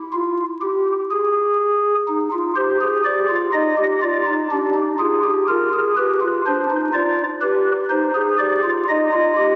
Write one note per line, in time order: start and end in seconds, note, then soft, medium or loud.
0.13 0.43 F4 medium
0.62 0.92 G4 medium
1.11 1.94 G#4 medium
2.08 2.29 D#4 medium
2.33 2.53 F4 soft
2.56 2.77 G4 medium
2.56 2.86 C5 medium
2.81 3.02 G#4 medium
3.04 3.25 G4 medium
3.04 3.35 D5 medium
3.29 3.50 F4 medium
3.53 3.74 D#4 medium
3.53 3.83 D#5 medium
3.77 3.98 G4 medium
4.02 4.23 F4 medium
4.02 4.32 D5 medium
4.27 4.48 D#4 medium
4.51 4.72 D4 medium
4.51 4.81 G4 medium
4.74 4.95 D#4 soft
4.99 5.20 F4 medium
4.99 5.30 G#4 medium
5.24 5.45 G4 medium
5.48 5.70 F4 medium
5.48 5.78 A#4 medium
5.73 5.94 G#4 medium
5.97 6.18 G4 medium
5.97 6.27 B4 medium
6.21 6.42 F4 medium
6.46 6.66 D4 medium
6.46 6.76 C5 medium
6.70 6.90 D#4 medium
6.93 7.23 F4 medium
6.93 7.23 D5 medium
7.42 7.72 G4 medium
7.42 7.71 B4 medium
7.90 8.11 D#4 medium
7.90 8.20 C5 medium
8.15 8.35 G#4 medium
8.39 8.60 G4 medium
8.39 8.69 D5 medium
8.64 8.84 F4 soft
8.89 9.09 D#4 medium
8.89 9.55 D#5 medium
9.13 9.33 F4 medium
9.37 9.55 G4 medium